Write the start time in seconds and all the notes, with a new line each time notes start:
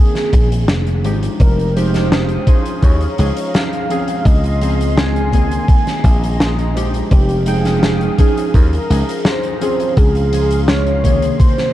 Already playing: D#3 A#3 C4 G#4
0.15 snare, closed hi-hat
0.33 A#1, kick, closed hi-hat
0.52 closed hi-hat
0.68 F1, snare, closed hi-hat
0.87 closed hi-hat
1.04 G#1 F3 G#3 D#4 G4, closed hi-hat
1.23 closed hi-hat
1.40 F1 G#3 A#4 F5 G5 D#6, kick, closed hi-hat
1.59 closed hi-hat
1.75 F3 G#3 D#4 G4 C5, closed hi-hat
1.94 snare, closed hi-hat
2.12 snare, closed hi-hat
2.29 closed hi-hat
2.47 F3 C#4 D#4 G#4 C5 F5 A#5, kick, closed hi-hat
2.66 closed hi-hat
2.83 D#2 C#5, kick, closed hi-hat
3.01 closed hi-hat
3.18 C#2 F3 C#4 D#4 G#4, closed hi-hat
3.37 closed hi-hat
3.54 F5, snare, closed hi-hat
3.73 closed hi-hat
3.89 F3 C4 C#4 G#4 C6, closed hi-hat
4.08 closed hi-hat
4.25 C#2 D#5, kick, closed hi-hat
4.44 closed hi-hat
4.61 F3 C4 C#4 G#4, closed hi-hat
4.81 closed hi-hat
4.97 G#5, snare, closed hi-hat
5.16 closed hi-hat
5.31 D#3 A#3 C4 G#4, kick, closed hi-hat
5.51 closed hi-hat
5.68 D#5 A#5, kick, closed hi-hat
5.87 snare, closed hi-hat
6.04 A#1, kick, closed hi-hat
6.24 closed hi-hat
6.40 snare, closed hi-hat
6.59 closed hi-hat
6.75 F3 G#3 D#4 G4, closed hi-hat
6.94 closed hi-hat
7.11 F1 G4 F5 G5 D#6, kick, closed hi-hat
7.29 closed hi-hat
7.46 F3 G#3 D#4 G#4 G5, closed hi-hat
7.65 snare, closed hi-hat
7.83 snare, closed hi-hat
8.01 closed hi-hat
8.18 F3 C#4 D#4 G#4 A#5, kick, closed hi-hat
8.37 closed hi-hat
8.54 D#2 A#4, kick, closed hi-hat
8.73 closed hi-hat
8.90 C#2 F3 C#4 D#4 G#4, closed hi-hat
9.09 closed hi-hat
9.25 C5, snare, closed hi-hat
9.43 closed hi-hat
9.61 F3 C4 C#4 G#4 F5 C6, closed hi-hat
9.80 closed hi-hat
9.97 C#2 G#4, kick, closed hi-hat
10.15 closed hi-hat
10.32 F3 G#3 C#4 G#4, closed hi-hat
10.51 closed hi-hat
10.68 C#5, snare, closed hi-hat
10.87 closed hi-hat
11.03 C3 D#3 A#3 G#4, kick, closed hi-hat
11.22 closed hi-hat
11.40 G#4 C5 D#5 A#5, kick, closed hi-hat
11.58 snare, closed hi-hat